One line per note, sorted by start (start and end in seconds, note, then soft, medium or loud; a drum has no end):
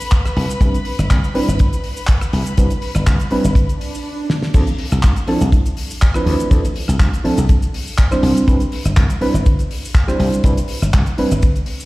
0.00 4.05 B4 medium
0.00 4.05 B5 medium
0.00 cabasa medium
0.11 kick loud
0.11 clap loud
0.11 closed hi-hat medium
0.11 cabasa medium
0.25 cross-stick medium
0.25 closed hi-hat soft
0.25 cabasa soft
0.36 0.45 C2 loud
0.36 open hi-hat loud
0.49 closed hi-hat medium
0.49 cabasa medium
0.61 0.69 C2 medium
0.61 0.75 G3 medium
0.61 0.75 C4 medium
0.61 0.75 D4 medium
0.61 0.75 E4 medium
0.61 0.75 B4 medium
0.61 kick loud
0.61 closed hi-hat medium
0.61 cabasa medium
0.74 closed hi-hat medium
0.74 cabasa medium
0.85 open hi-hat loud
0.99 1.06 G1 medium
0.99 cross-stick medium
0.99 closed hi-hat medium
0.99 cabasa medium
1.10 1.19 C2 medium
1.10 kick loud
1.10 clap loud
1.10 closed hi-hat medium
1.10 cabasa medium
1.24 cabasa soft
1.34 1.48 G3 loud
1.34 1.48 C4 medium
1.34 1.48 D4 medium
1.34 1.48 E4 medium
1.34 1.49 B4 loud
1.34 open hi-hat loud
1.48 1.55 G1 medium
1.48 closed hi-hat medium
1.48 cabasa medium
1.59 kick loud
1.59 closed hi-hat medium
1.59 cabasa medium
1.73 closed hi-hat soft
1.73 cabasa medium
1.84 open hi-hat loud
1.97 cabasa medium
2.07 kick loud
2.07 clap loud
2.07 closed hi-hat loud
2.07 cabasa medium
2.21 cross-stick medium
2.21 closed hi-hat medium
2.21 cabasa medium
2.33 2.41 C2 loud
2.33 open hi-hat loud
2.46 closed hi-hat medium
2.46 cabasa medium
2.57 2.66 C2 loud
2.57 2.71 G3 medium
2.57 2.71 C4 medium
2.57 2.71 D4 medium
2.57 2.72 E4 medium
2.57 2.72 B4 medium
2.57 kick loud
2.57 closed hi-hat loud
2.57 cabasa medium
2.70 closed hi-hat medium
2.70 cabasa medium
2.82 open hi-hat loud
2.95 3.03 G1 medium
2.95 cross-stick medium
2.95 closed hi-hat medium
2.95 cabasa medium
3.06 3.15 C2 medium
3.06 kick loud
3.06 clap loud
3.06 closed hi-hat medium
3.06 cabasa medium
3.20 closed hi-hat soft
3.20 cabasa soft
3.31 3.45 G3 loud
3.31 3.45 C4 medium
3.31 3.45 D4 medium
3.31 3.45 E4 medium
3.31 3.45 B4 loud
3.31 muted slap bass stroke soft
3.31 open hi-hat loud
3.44 3.52 G1 medium
3.44 closed hi-hat medium
3.44 cabasa medium
3.55 kick loud
3.55 closed hi-hat medium
3.55 swell medium
3.55 cabasa medium
3.69 closed hi-hat medium
3.69 cabasa soft
3.81 open hi-hat loud
3.95 cabasa medium
4.30 snare medium
4.42 snare medium
4.54 4.63 D2 loud
4.54 4.68 F3 medium
4.54 4.68 C4 medium
4.54 4.68 D4 medium
4.54 4.68 E4 medium
4.54 4.68 A4 medium
4.54 kick loud
4.54 closed hi-hat loud
4.54 crash loud
4.54 cabasa medium
4.67 closed hi-hat medium
4.67 cabasa soft
4.78 open hi-hat loud
4.91 4.99 C2 medium
4.91 cross-stick medium
4.91 closed hi-hat medium
4.91 cabasa medium
5.03 5.12 D2 medium
5.03 kick loud
5.03 clap loud
5.03 closed hi-hat medium
5.03 cabasa medium
5.16 closed hi-hat medium
5.16 cabasa soft
5.28 5.42 F3 loud
5.28 5.42 C4 medium
5.28 5.42 D4 medium
5.28 5.42 E4 medium
5.28 5.42 A4 loud
5.28 open hi-hat loud
5.41 5.48 C2 medium
5.41 closed hi-hat medium
5.41 cabasa medium
5.52 kick loud
5.52 closed hi-hat loud
5.52 cabasa medium
5.66 closed hi-hat medium
5.66 cabasa medium
5.77 open hi-hat loud
5.90 cabasa medium
6.01 kick loud
6.01 clap loud
6.01 closed hi-hat medium
6.01 cabasa medium
6.14 6.48 F3 loud
6.14 6.48 C4 medium
6.14 6.48 D4 medium
6.14 6.48 E4 medium
6.14 6.49 B4 loud
6.14 cross-stick medium
6.14 cabasa soft
6.26 6.35 D2 loud
6.26 open hi-hat medium
6.40 closed hi-hat medium
6.40 cabasa medium
6.51 6.60 D2 loud
6.51 6.65 F3 medium
6.51 6.65 C4 medium
6.51 6.65 D4 medium
6.51 6.65 E4 medium
6.51 6.65 A4 medium
6.51 kick loud
6.51 closed hi-hat loud
6.51 cabasa medium
6.65 closed hi-hat medium
6.65 cabasa soft
6.76 open hi-hat loud
6.88 6.96 C2 medium
6.88 cross-stick medium
6.88 closed hi-hat medium
6.88 cabasa medium
7.00 7.08 D2 medium
7.00 kick loud
7.00 clap loud
7.00 closed hi-hat medium
7.00 cabasa medium
7.13 closed hi-hat soft
7.13 cabasa medium
7.24 7.38 F3 loud
7.24 7.38 C4 medium
7.24 7.38 D4 medium
7.24 7.39 E4 medium
7.24 7.39 A4 loud
7.24 muted slap bass stroke soft
7.24 open hi-hat medium
7.37 7.45 C2 medium
7.37 closed hi-hat medium
7.37 cabasa medium
7.49 kick loud
7.49 closed hi-hat loud
7.49 cabasa medium
7.62 closed hi-hat medium
7.62 cabasa soft
7.74 open hi-hat loud
7.87 cabasa medium
7.98 kick loud
7.98 clap loud
7.98 closed hi-hat medium
7.98 cabasa medium
8.11 8.45 G3 loud
8.11 8.45 C4 medium
8.11 8.45 D4 medium
8.11 8.45 E4 medium
8.11 8.45 C5 loud
8.11 cross-stick medium
8.11 cabasa soft
8.23 8.31 C2 loud
8.23 open hi-hat loud
8.37 closed hi-hat medium
8.37 cabasa medium
8.47 8.56 C2 loud
8.47 8.61 G3 medium
8.47 8.61 C4 medium
8.47 8.61 D4 medium
8.47 8.62 E4 medium
8.47 8.62 B4 loud
8.47 kick loud
8.47 closed hi-hat medium
8.47 cabasa medium
8.60 closed hi-hat medium
8.60 cabasa soft
8.72 open hi-hat loud
8.85 8.93 G1 medium
8.85 cross-stick medium
8.85 closed hi-hat medium
8.85 cabasa medium
8.97 9.05 C2 medium
8.97 kick loud
8.97 clap loud
8.97 closed hi-hat medium
8.97 cabasa medium
9.10 closed hi-hat medium
9.10 cabasa medium
9.21 9.35 G3 loud
9.21 9.35 C4 medium
9.21 9.35 D4 medium
9.21 9.35 E4 medium
9.21 9.35 B4 loud
9.21 open hi-hat loud
9.34 9.42 G1 medium
9.34 closed hi-hat medium
9.34 cabasa medium
9.46 kick loud
9.46 closed hi-hat medium
9.46 cabasa medium
9.59 closed hi-hat medium
9.59 cabasa soft
9.71 open hi-hat loud
9.85 cabasa medium
9.95 kick loud
9.95 clap loud
9.95 closed hi-hat medium
9.95 cabasa medium
10.08 10.41 G3 loud
10.08 10.41 C4 medium
10.08 10.42 D4 medium
10.08 10.42 E4 medium
10.08 10.42 C5 loud
10.08 cross-stick medium
10.08 cabasa soft
10.20 10.28 C2 loud
10.20 open hi-hat loud
10.32 closed hi-hat medium
10.32 cabasa medium
10.44 10.53 C2 loud
10.44 10.58 G3 medium
10.44 10.58 C4 medium
10.44 10.58 D4 medium
10.44 10.58 E4 medium
10.44 10.58 B4 loud
10.44 kick loud
10.44 closed hi-hat medium
10.44 cabasa medium
10.57 closed hi-hat medium
10.57 cabasa soft
10.68 open hi-hat loud
10.82 10.89 G1 medium
10.82 cross-stick medium
10.82 closed hi-hat medium
10.82 cabasa medium
10.93 11.02 C2 medium
10.93 kick loud
10.93 clap loud
10.93 closed hi-hat medium
10.93 cabasa medium
11.06 closed hi-hat medium
11.06 cabasa medium
11.18 11.32 G3 medium
11.18 11.32 C4 medium
11.18 11.32 D4 medium
11.18 11.32 E4 medium
11.18 11.32 B4 loud
11.18 muted slap bass stroke soft
11.18 open hi-hat medium
11.31 11.39 G1 medium
11.31 closed hi-hat medium
11.31 cabasa medium
11.42 kick loud
11.42 closed hi-hat medium
11.42 cabasa medium
11.56 closed hi-hat soft
11.56 cabasa soft
11.66 open hi-hat loud
11.80 cabasa medium